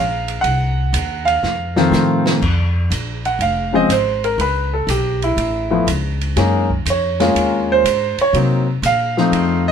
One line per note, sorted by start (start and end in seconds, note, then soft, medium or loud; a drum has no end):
0.00 0.43 A#1 medium
0.00 0.40 F5 medium
0.28 ride soft
0.41 0.92 C2 medium
0.41 1.28 F#5 loud
0.41 ride medium
0.93 1.41 D#2 medium
0.93 hi-hat pedal medium
0.93 ride medium
1.25 2.21 F5 loud
1.25 ride soft
1.43 1.91 F2 medium
1.43 snare soft
1.76 2.39 D#3 medium
1.76 2.39 F3 medium
1.76 2.39 A3 medium
1.76 2.39 C4 medium
1.76 snare medium
1.92 2.40 A2 medium
1.92 snare medium
1.92 hi-hat pedal medium
2.26 snare medium
2.41 2.89 F2 medium
2.41 kick medium
2.41 crash medium
2.90 3.38 A#1 medium
2.90 hi-hat pedal medium
2.90 ride medium
3.25 3.40 F#5 medium
3.25 ride soft
3.39 3.88 F1 medium
3.39 3.74 F5 medium
3.39 ride medium
3.73 3.88 C#3 medium
3.73 3.88 F3 medium
3.73 3.88 G#3 medium
3.73 3.89 C4 medium
3.73 3.90 D#5 medium
3.89 4.37 G#1 medium
3.89 4.24 C5 medium
3.89 hi-hat pedal medium
3.89 ride medium
4.24 4.39 A#4 medium
4.24 ride soft
4.38 4.86 C#2 medium
4.38 4.73 B4 medium
4.38 ride medium
4.74 4.88 A4 medium
4.87 5.36 B1 medium
4.87 5.22 G4 medium
4.87 hi-hat pedal medium
4.87 ride medium
5.22 5.71 E4 medium
5.22 ride soft
5.37 5.85 A1 medium
5.37 ride medium
5.71 5.85 F3 medium
5.71 5.86 A3 medium
5.71 5.86 B3 medium
5.71 5.86 E4 medium
5.87 6.35 C#2 medium
5.87 hi-hat pedal medium
5.87 ride medium
6.21 ride soft
6.36 6.84 F#2 medium
6.36 6.67 G#3 medium
6.36 6.67 A#3 medium
6.36 6.68 C#4 medium
6.36 6.68 D#4 medium
6.36 snare soft
6.36 ride medium
6.70 kick medium
6.85 7.34 F2 medium
6.85 hi-hat pedal medium
6.85 ride medium
6.90 7.67 C#5 medium
7.20 7.82 G#3 medium
7.20 7.82 A#3 medium
7.20 7.82 C#4 medium
7.20 7.82 F4 medium
7.20 snare medium
7.20 ride soft
7.35 7.83 D#2 medium
7.35 ride medium
7.72 8.17 C5 loud
7.84 8.16 G#2 medium
7.84 hi-hat pedal medium
7.84 ride medium
8.18 8.35 C#5 medium
8.18 muted upright bass stroke soft
8.18 ride soft
8.33 8.82 C3 medium
8.33 8.65 F#3 medium
8.33 8.65 A#3 soft
8.33 8.65 C4 soft
8.33 8.65 D#4 medium
8.33 ride medium
8.82 9.31 A#2 medium
8.82 9.64 F5 loud
8.82 hi-hat pedal medium
8.82 ride medium
9.17 9.72 F3 medium
9.17 9.72 A3 medium
9.17 9.72 C4 medium
9.17 9.72 D#4 medium
9.17 snare soft
9.32 9.72 F2 medium
9.32 ride medium
9.68 9.72 D#5 loud